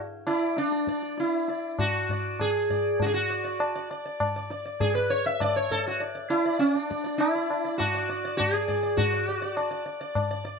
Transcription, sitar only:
0.27 0.58 E4 medium
0.27 0.55 D5 soft
0.58 1.19 D4 medium
0.58 0.86 D5 soft
0.89 1.17 D5 soft
1.20 1.82 E4 medium
1.49 1.77 D5 soft
1.79 2.40 F#4 medium
2.11 2.38 D5 soft
2.41 3.02 G#4 loud
2.70 2.98 D5 soft
3.02 3.06 F#4 medium
3.06 3.13 G#4 medium
3.14 3.87 F#4 medium
3.30 3.43 D5 soft
3.44 3.59 D5 soft
3.60 3.74 D5 soft
3.75 3.90 D5 soft
3.91 4.04 D5 soft
4.06 4.19 D5 soft
4.20 4.35 D5 soft
4.36 4.50 D5 soft
4.51 4.64 D5 soft
4.65 4.94 D5 soft
4.81 4.94 G#4 medium
4.95 5.11 B4 medium
5.10 5.25 C#5 loud
5.26 5.41 E5 loud
5.41 5.56 D5 loud
5.56 5.72 C#5 medium
5.71 5.87 A4 loud
5.87 6.01 F#4 medium
6.00 6.14 D5 soft
6.15 6.43 D5 soft
6.30 6.59 E4 medium
6.46 6.74 D5 soft
6.59 6.75 C#4 medium
6.75 7.18 D4 medium
6.75 6.89 D5 soft
6.90 7.03 D5 soft
7.04 7.33 D5 soft
7.18 7.81 E4 medium
7.35 7.50 D5 soft
7.51 7.64 D5 soft
7.65 7.93 D5 soft
7.78 8.37 F#4 loud
7.95 8.08 D5 soft
8.09 8.24 D5 soft
8.25 8.52 D5 soft
8.37 8.54 F#4 loud
8.53 8.93 G#4 loud
8.53 8.67 D5 soft
8.68 8.82 D5 soft
8.83 9.11 D5 soft
8.97 9.82 F#4 loud
9.14 9.27 D5 soft
9.28 9.41 D5 soft
9.42 9.56 D5 soft
9.57 9.70 D5 soft
9.71 9.84 D5 soft
9.86 10.00 D5 soft
10.01 10.15 D5 soft
10.16 10.29 D5 soft
10.31 10.44 D5 soft
10.45 10.59 D5 soft

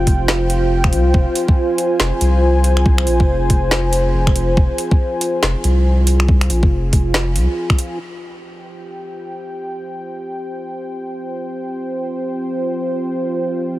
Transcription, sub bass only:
0.07 0.94 F1 loud
0.93 1.13 C2 loud
1.14 1.26 F1 loud
2.00 2.12 F1 loud
2.21 3.06 C2 medium
3.07 3.21 A#1 medium
3.20 3.49 F1 medium
3.50 4.13 F1 loud
4.14 4.56 F1 loud
4.57 4.69 F1 loud
5.43 5.55 F1 loud
5.64 6.49 C2 medium
6.50 6.64 A#1 medium
6.63 6.92 F1 loud
6.93 7.37 F1 loud
7.35 7.47 C2 medium

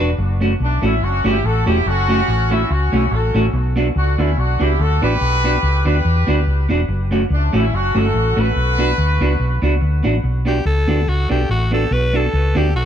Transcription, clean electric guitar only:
0.00 0.10 B4 medium
0.41 0.52 A3 medium
0.41 0.52 C#4 medium
0.41 0.52 F#4 medium
0.82 0.93 A3 medium
0.82 0.94 C#4 medium
0.82 0.94 F#4 medium
1.24 1.35 A3 medium
1.24 1.36 C#4 medium
1.24 1.36 F#4 loud
1.66 1.77 A3 medium
1.66 1.78 C#4 medium
1.66 1.78 F#4 loud
2.08 2.19 A3 medium
2.08 2.20 C#4 medium
2.08 2.20 F#4 medium
2.50 2.61 A3 medium
2.50 2.62 C#4 medium
2.50 2.62 F#4 medium
2.92 3.03 A3 medium
2.92 3.03 C#4 medium
2.92 3.04 F#4 medium
3.34 3.45 A3 medium
3.34 3.45 C#4 medium
3.34 3.46 F#4 medium
3.76 3.87 B3 medium
3.76 3.87 D4 medium
3.76 3.87 F#4 medium
4.18 4.29 B3 medium
4.18 4.29 D4 medium
4.18 4.30 F#4 medium
4.59 4.70 B3 medium
4.59 4.71 D4 medium
4.59 4.71 F#4 medium
5.02 5.13 B3 medium
5.02 5.13 D4 medium
5.02 5.13 F#4 medium
5.44 5.55 B3 medium
5.44 5.55 D4 medium
5.44 5.55 F#4 medium
5.85 5.96 B3 medium
5.85 5.96 D4 medium
5.85 5.97 F#4 medium
6.27 6.38 B3 medium
6.27 6.38 D4 medium
6.27 6.39 F#4 loud
6.69 6.80 B3 medium
6.69 6.80 D4 medium
6.69 6.81 F#4 medium
7.11 7.22 A3 medium
7.11 7.22 C#4 medium
7.11 7.23 F#4 loud
7.53 7.64 A3 medium
7.53 7.64 C#4 medium
7.53 7.64 F#4 loud
7.95 8.06 A3 medium
7.95 8.06 C#4 medium
7.95 8.06 F#4 loud
8.14 muted clean electric guitar stroke soft
8.36 8.47 A3 medium
8.36 8.48 C#4 medium
8.36 8.48 F#4 medium
8.78 8.89 B3 medium
8.78 8.90 D4 medium
8.78 8.90 F#4 loud
9.21 9.32 B3 medium
9.21 9.32 D4 medium
9.21 9.32 F#4 medium
9.62 9.73 B3 medium
9.62 9.73 D4 medium
9.62 9.74 F#4 medium
10.03 10.15 B3 medium
10.03 10.15 D4 medium
10.03 10.15 F#4 medium
10.45 10.57 B3 medium
10.45 10.57 D4 medium
10.45 10.57 F#4 medium
10.87 10.99 B3 medium
10.87 10.99 D4 medium
10.87 10.99 F#4 medium
11.29 11.40 B3 medium
11.29 11.41 D4 medium
11.29 11.41 F#4 medium
11.71 11.82 B3 medium
11.71 11.83 D4 medium
11.71 11.83 F#4 medium
12.13 12.24 B3 medium
12.13 12.24 D4 medium
12.13 12.25 F#4 medium
12.55 12.66 B3 medium
12.55 12.66 D4 loud
12.55 12.67 F#4 loud

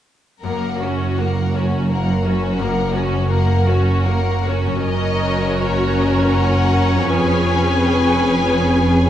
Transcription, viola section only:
0.44 0.79 A#3 soft
0.81 1.18 C#4 soft
1.17 1.54 A#3 soft
1.54 1.90 C#4 soft
1.90 2.22 A#3 soft
2.25 2.59 C#4 soft
2.60 2.94 A#3 soft
2.94 3.30 C#4 soft
3.30 3.65 A#3 soft
3.67 4.05 C#4 soft
4.06 4.46 A#3 soft
4.47 4.85 C#4 soft
4.86 9.10 C#4 soft
4.86 7.09 F#4 soft
7.13 9.10 G#4 soft

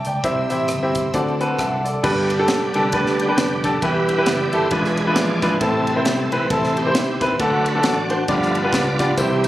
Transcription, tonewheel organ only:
0.23 0.56 G3 soft
0.23 0.56 C4 soft
0.23 0.56 E4 soft
1.13 1.82 F#3 soft
1.13 1.82 C4 soft
1.13 1.83 E4 medium
2.05 2.75 B3 medium
2.05 2.90 D4 medium
2.05 2.78 G4 medium
2.75 3.78 D3 medium
2.75 3.79 G3 medium
2.75 3.20 B3 medium
2.75 2.92 B4 loud
2.94 3.20 D4 medium
2.94 3.19 A4 loud
3.21 3.80 B3 medium
3.21 3.79 D4 medium
3.21 3.66 G4 loud
3.65 3.73 A4 loud
3.82 4.68 E3 medium
3.82 4.68 G3 medium
3.82 4.68 B3 medium
3.82 4.68 E4 medium
3.82 4.68 G4 medium
3.82 4.28 B4 loud
4.27 4.55 D5 loud
4.53 4.72 C5 loud
4.70 5.56 E3 medium
4.70 5.57 G#3 medium
4.70 5.57 D4 medium
4.70 5.16 G#4 medium
4.70 5.12 B4 loud
5.11 5.17 E5 medium
5.15 5.58 F4 medium
5.15 5.58 G#4 medium
5.15 5.49 D5 loud
5.60 7.35 C3 medium
5.60 6.32 A3 medium
5.60 6.32 C4 medium
5.60 6.46 E4 medium
5.60 5.94 A4 loud
5.93 6.01 B4 medium
6.00 6.10 A4 medium
6.10 6.21 G4 medium
6.21 6.32 A4 medium
6.32 6.48 E3 medium
6.32 6.49 A3 medium
6.32 6.49 C4 medium
6.32 6.51 B4 loud
6.52 6.77 C4 medium
6.52 6.77 E4 medium
6.52 6.76 A4 loud
6.78 7.36 C4 medium
6.78 7.36 E4 medium
6.78 7.23 G4 loud
7.23 7.31 A4 medium
7.38 8.06 F#3 medium
7.38 8.07 A3 medium
7.38 8.25 D4 medium
7.38 8.24 F#4 medium
7.38 7.85 B4 loud
7.84 8.08 D5 loud
8.10 8.18 C5 loud
8.28 8.60 F3 medium
8.28 8.61 A3 medium
8.28 8.61 B3 medium
8.28 9.14 D4 medium
8.28 8.73 F4 medium
8.28 8.73 B4 loud
8.74 9.15 F4 medium
8.74 9.15 B4 medium
8.74 9.07 D5 loud
9.19 9.48 E3 medium
9.19 9.48 G3 soft
9.19 9.48 C4 medium
9.19 9.48 E4 medium
9.19 9.48 G4 medium

